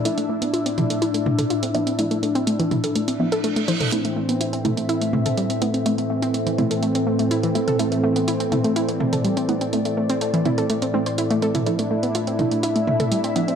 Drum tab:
HH |xx-xxxxxxx-xxxxx|xxxxxxxxxx-xxxxx|xx-xxxxxxx-xxxxx|xx-xxxxxxx-xxxxx|
T2 |------o---oo----|------o--------o|------o---oo----|------o--------o|

HH |xx-xxxxxxx-xxxxx|xx-xxxxxxx-xxxxx|xx-xxxxxxx-xxxxx|
T2 |------o---oo----|------o--------o|------o---oo----|